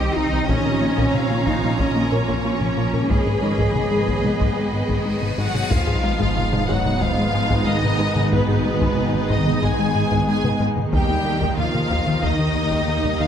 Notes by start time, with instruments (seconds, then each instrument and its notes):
Already playing: double bass section C2, ambient pad D#3 C4 D#4 G4, viola section C4 D#4, french horn section G4, cello section G4, violin section D#5 G5
0.00 analog synth bass C2, synth arpeggio sound D#3
0.16 analog synth bass C2, synth arpeggio sound C3, cello section D#4, french horn section D#4
0.33 analog synth bass C2, synth arpeggio sound C4
0.48 double bass section A#1, analog synth bass A#2, ambient pad F3 A#3 A#4 C#5, synth arpeggio sound A#3, cello section C#4, french horn section C#4, viola section C#4 F4, violin section C#5 A#5, taiko
0.66 analog synth bass A#2, synth arpeggio sound A#4
0.81 analog synth bass A#3, synth arpeggio sound F4
0.98 analog synth bass A#2, synth arpeggio sound A#3, taiko
1.14 analog synth bass A#2, violin section F5, taiko mid
1.31 analog synth bass A#3, synth arpeggio sound F4, taiko mid
1.47 analog synth bass A#2, synth arpeggio sound A#3, cello section D#4, french horn section D#4, violin section F5, taiko
1.63 analog synth bass A#3, synth arpeggio sound F4, taiko mid
1.79 analog synth bass A#2, synth arpeggio sound A#3, cello section C#4, french horn section C#4, violin section D#5, taiko
1.96 analog synth bass A#3
2.12 analog synth bass A#2, synth arpeggio sound A#4, violin section C#5
2.28 analog synth bass A#2, synth arpeggio sound A#3, taiko
2.44 analog synth bass A#3, cello section C#4, french horn section C#4, synth arpeggio sound F4
2.61 analog synth bass A#2, synth arpeggio sound C#4, taiko mid
2.77 analog synth bass A#2, synth arpeggio sound A#3
2.94 analog synth bass A#2, synth arpeggio sound A#4, taiko mid
3.09 double bass section G#1, analog synth bass G#2, ambient pad D#3 B3 G#4 D#5, synth arpeggio sound G#3, cello section G#4, viola section G#4, french horn section G#4, violin section B4 D#5 B5, taiko, cymbal swell
3.26 analog synth bass G#2, synth arpeggio sound G#4
3.42 analog synth bass G#3, synth arpeggio sound D#4
3.58 analog synth bass G#2, synth arpeggio sound G#3, taiko
3.75 analog synth bass G#2, viola section B3, taiko mid
3.91 analog synth bass G#3, synth arpeggio sound D#4, taiko mid
4.08 analog synth bass G#2, synth arpeggio sound G#3, taiko
4.24 analog synth bass G#3, synth arpeggio sound D#4, taiko mid
4.40 analog synth bass G#2, synth arpeggio sound G#3, taiko
4.57 analog synth bass G#3
4.73 analog synth bass G#2, synth arpeggio sound G#4
4.89 analog synth bass G#2, synth arpeggio sound G#3, taiko
5.05 analog synth bass G#3, synth arpeggio sound D#4
5.22 analog synth bass G#2, synth arpeggio sound B3, taiko mid
5.38 analog synth bass G#2, french horn section F#3, synth arpeggio sound G#3, violin section F#4 F#5
5.54 analog synth bass G#2, synth arpeggio sound G#4, taiko mid
5.70 double bass section G#1, cello section G#2, analog synth bass G#2, ambient pad D#3 B3 G#4 D#5, french horn section F3, synth arpeggio sound G#3, viola section B3 D#4, violin section F4 F5, taiko, sub drop
5.87 analog synth bass G#2, synth arpeggio sound G#4
6.03 analog synth bass G#3, synth arpeggio sound D#4
6.19 analog synth bass G#2, synth arpeggio sound G#3, taiko
6.36 analog synth bass G#2, taiko mid
6.53 analog synth bass G#3, synth arpeggio sound D#4, taiko mid
6.68 analog synth bass G#2, french horn section F#3, synth arpeggio sound G#3, violin section F#4 F#5, taiko
6.85 analog synth bass G#3, synth arpeggio sound D#4, taiko mid
7.01 analog synth bass G#2, french horn section F3, synth arpeggio sound G#3, violin section F4 F5, taiko
7.18 analog synth bass G#3
7.34 analog synth bass G#2, synth arpeggio sound G#4
7.51 analog synth bass G#2, synth arpeggio sound G#3, taiko
7.66 french horn section D#3, analog synth bass G#3, violin section D#4 D#5, synth arpeggio sound D#4
7.83 analog synth bass G#2, synth arpeggio sound B3, taiko mid
7.99 analog synth bass G#2, synth arpeggio sound G#3
8.16 analog synth bass G#2, synth arpeggio sound G#4, taiko mid
8.31 analog synth bass G#2, french horn section B2, synth arpeggio sound G#3, violin section B3 B4, taiko
8.49 analog synth bass G#2, synth arpeggio sound G#4
8.65 analog synth bass G#3, synth arpeggio sound D#4
8.81 analog synth bass G#2, synth arpeggio sound G#3, taiko
8.97 analog synth bass G#2, taiko mid
9.14 analog synth bass G#3, synth arpeggio sound D#4, taiko mid
9.30 analog synth bass G#2, french horn section D#3, synth arpeggio sound G#3, violin section D#4 D#5, taiko
9.46 analog synth bass G#3, synth arpeggio sound D#4, taiko mid
9.62 analog synth bass G#2, synth arpeggio sound G#3, french horn section G#3, violin section G#4 G#5, taiko
9.79 analog synth bass G#3
9.95 analog synth bass G#2, synth arpeggio sound G#4
10.12 analog synth bass G#2, synth arpeggio sound G#3, taiko
10.28 french horn section G#3, analog synth bass G#3, synth arpeggio sound D#4, violin section G#4 G#5
10.44 analog synth bass G#2, synth arpeggio sound B3, taiko mid
10.60 analog synth bass G#2, synth arpeggio sound G#3
10.77 analog synth bass G#2, synth arpeggio sound G#4, taiko mid
10.92 analog synth bass D#2, double bass section D#2, cello section D#3, synth arpeggio sound D#3, ambient pad D#3 A#3 G4 D#5, french horn section G3, viola section A#3 D#4, violin section G4 G5, taiko
11.09 analog synth bass D#2, synth arpeggio sound D#4
11.25 analog synth bass D#3, synth arpeggio sound A#3
11.41 analog synth bass D#2, synth arpeggio sound D#3, taiko
11.57 analog synth bass D#2, french horn section F3, violin section F4 F5, taiko mid
11.74 analog synth bass D#3, synth arpeggio sound A#3, taiko mid
11.90 analog synth bass D#2, synth arpeggio sound D#3, taiko
12.07 analog synth bass D#3, synth arpeggio sound A#3, taiko mid
12.23 analog synth bass D#2, synth arpeggio sound D#3, french horn section D#3, violin section D#4 D#5, taiko
12.39 analog synth bass D#3
12.56 analog synth bass D#2, synth arpeggio sound D#4
12.71 analog synth bass D#2, synth arpeggio sound D#3, taiko
12.88 analog synth bass D#3, synth arpeggio sound A#3
13.04 analog synth bass D#2, synth arpeggio sound G3, taiko mid
13.20 analog synth bass D#2, synth arpeggio sound D#3, french horn section F3, violin section F4 F5